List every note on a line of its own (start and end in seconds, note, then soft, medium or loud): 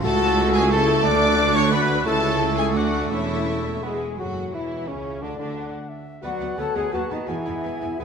0.03 1.07 C#2 loud
0.03 1.05 C#2 loud
0.03 2.02 A3 loud
0.03 1.01 E4 medium
0.03 0.70 F#4 loud
0.03 0.56 A4 loud
0.03 2.02 A4 loud
0.03 0.51 A4 loud
0.03 1.06 C#5 medium
0.03 0.51 A5 loud
0.03 1.01 E6 loud
0.55 0.71 G#4 loud
0.55 0.71 G#5 loud
0.71 1.05 E4 loud
0.71 1.04 A4 loud
0.71 1.04 A5 loud
1.04 2.06 D2 loud
1.04 2.05 D2 loud
1.04 1.72 D4 loud
1.04 2.02 F#4 medium
1.04 1.55 D5 loud
1.04 2.05 D5 medium
1.04 1.57 D5 loud
1.04 1.55 D6 loud
1.04 2.06 F#6 loud
1.55 1.72 C#5 loud
1.55 1.72 C#6 loud
1.71 2.06 F#4 loud
1.71 2.06 B4 loud
1.71 2.08 B4 loud
1.71 2.06 B5 loud
2.05 2.76 C#2 loud
2.05 2.74 C#2 medium
2.05 2.74 C#2 loud
2.05 3.85 A3 loud
2.05 3.80 A3 medium
2.05 2.73 E4 loud
2.05 2.71 E4 medium
2.05 2.56 A4 loud
2.05 3.84 A4 loud
2.05 2.57 A4 loud
2.05 2.73 C#5 loud
2.05 2.56 A5 loud
2.05 2.74 E6 medium
2.57 2.75 G#4 loud
2.57 2.74 G#4 medium
2.57 2.64 G#5 loud
2.74 3.10 D2 loud
2.74 3.10 D2 medium
2.74 3.11 D2 medium
2.74 3.08 D4 medium
2.74 3.10 D4 medium
2.74 3.10 F#4 medium
2.74 3.10 F#4 loud
2.74 3.12 D5 medium
2.74 3.10 F#5 medium
2.74 3.10 D6 medium
3.11 4.00 E1 medium
3.11 3.82 E2 medium
3.11 3.67 C#4 medium
3.11 3.79 C#4 medium
3.11 3.82 E4 medium
3.11 4.01 E4 loud
3.11 3.85 C#5 medium
3.11 4.00 E5 medium
3.11 3.83 E6 medium
3.83 4.17 G#3 medium
3.83 4.00 G#3 medium
3.83 4.00 B3 medium
3.83 4.02 B3 medium
3.83 4.01 G#4 medium
3.83 4.17 G#4 medium
3.83 4.01 B4 medium
3.83 4.17 G#5 medium
4.19 4.52 F#1 medium
4.19 4.52 F#2 medium
4.19 4.54 F#3 medium
4.19 4.56 F#3 medium
4.19 4.52 F#4 medium
4.19 4.56 F#4 medium
4.19 4.52 F#4 soft
4.19 4.54 F#4 medium
4.19 4.52 F#4 medium
4.19 4.51 A4 medium
4.19 4.54 F#5 medium
4.53 4.89 E1 medium
4.53 4.88 E2 medium
4.53 4.88 E3 medium
4.53 4.90 E3 medium
4.53 4.90 E4 medium
4.53 4.88 E4 medium
4.53 4.89 E4 medium
4.53 4.88 E4 medium
4.53 4.89 E4 medium
4.53 4.88 E4 medium
4.53 4.87 C#5 medium
4.53 4.88 E5 medium
4.88 5.23 C#2 medium
4.88 5.22 C#2 medium
4.88 5.21 C#3 medium
4.88 5.22 C#3 medium
4.88 5.23 C#4 medium
4.88 5.22 C#4 medium
4.88 5.23 C#4 medium
4.88 5.22 C#4 medium
4.88 5.23 C#4 medium
4.88 5.22 C#5 medium
4.88 5.21 E5 medium
5.22 5.38 D2 medium
5.22 5.39 D2 medium
5.22 5.38 D3 medium
5.22 5.29 D3 medium
5.22 5.39 D4 medium
5.22 5.38 D4 medium
5.22 5.29 D4 medium
5.22 5.39 D4 medium
5.22 5.38 D4 medium
5.22 5.57 D5 medium
5.22 5.38 D5 medium
5.39 5.72 D2 medium
5.39 5.72 D3 medium
5.39 5.72 D4 medium
5.39 5.72 D5 soft
5.55 5.91 F#5 medium
5.89 6.23 E5 medium
6.23 6.31 D2 medium
6.23 6.56 F#3 medium
6.23 6.89 B3 medium
6.23 6.31 B3 medium
6.23 6.56 F#4 loud
6.23 6.60 F#4 medium
6.23 6.30 B4 medium
6.23 6.61 D5 medium
6.23 6.95 F#5 medium
6.23 6.56 F#5 medium
6.23 6.31 F#5 medium
6.41 6.48 D2 medium
6.41 6.48 B3 medium
6.41 6.48 B4 medium
6.41 6.48 F#5 medium
6.58 6.65 D2 medium
6.58 6.66 D2 medium
6.58 6.65 A3 medium
6.58 6.66 B3 medium
6.58 6.76 A4 loud
6.58 6.76 A4 medium
6.58 6.65 B4 medium
6.58 6.95 C#5 medium
6.58 6.65 F#5 medium
6.58 6.76 A5 medium
6.75 6.83 D2 medium
6.75 6.83 G#3 medium
6.75 6.83 B3 medium
6.75 6.93 G#4 medium
6.75 6.82 B4 medium
6.75 6.83 F#5 medium
6.75 6.93 G#5 medium
6.92 7.01 D#2 medium
6.92 7.11 F#3 medium
6.92 7.28 B3 medium
6.92 7.00 B3 medium
6.92 7.02 F#4 loud
6.92 7.13 F#4 medium
6.92 6.99 B4 medium
6.92 7.29 B4 medium
6.92 7.11 F#5 medium
6.92 7.30 A5 medium
6.92 7.01 A5 medium
7.10 7.18 D#2 medium
7.10 7.29 D#3 medium
7.10 7.18 B3 medium
7.10 7.29 D#4 medium
7.10 7.20 D#4 medium
7.10 7.18 B4 medium
7.10 7.28 D#5 medium
7.10 7.18 A5 medium
7.28 7.36 E1 medium
7.28 7.36 E2 medium
7.28 8.00 E3 medium
7.28 7.98 B3 medium
7.28 7.36 B3 medium
7.28 7.99 E4 medium
7.28 8.04 G#4 medium
7.28 7.35 B4 medium
7.28 7.98 E5 medium
7.28 7.35 G#5 medium
7.28 7.99 G#5 medium
7.46 7.53 E1 medium
7.46 7.54 E2 medium
7.46 7.54 B3 medium
7.46 7.53 B4 medium
7.46 7.53 G#5 medium
7.63 7.71 E1 medium
7.63 7.71 E2 medium
7.63 7.71 B3 medium
7.63 7.71 B4 medium
7.63 7.71 G#5 medium
7.81 7.89 E1 medium
7.81 7.89 E2 medium
7.81 7.89 B3 medium
7.81 7.89 B4 soft
7.81 7.89 G#5 medium
7.99 8.04 E1 medium
7.99 8.04 E2 medium
7.99 8.04 G#3 medium
7.99 8.04 B3 medium
7.99 8.04 G#4 loud
7.99 8.04 G#4 medium
7.99 8.04 B4 medium
7.99 8.04 G#5 medium